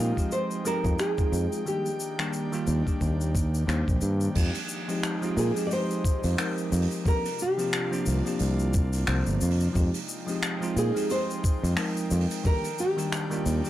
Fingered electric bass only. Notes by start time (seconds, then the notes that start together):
Already playing: A#2
0.85 F2
1.32 F2
2.68 D#2
3.01 D#2
3.68 D#2
3.88 A#1
4.02 G2
4.36 F2
5.37 A#2
6.24 F2
6.72 F2
8.07 C2
8.41 C2
9.08 C2
9.27 G1
9.42 F2
9.76 F2
10.76 A#2
11.63 F2
12.11 F2
13.46 D#2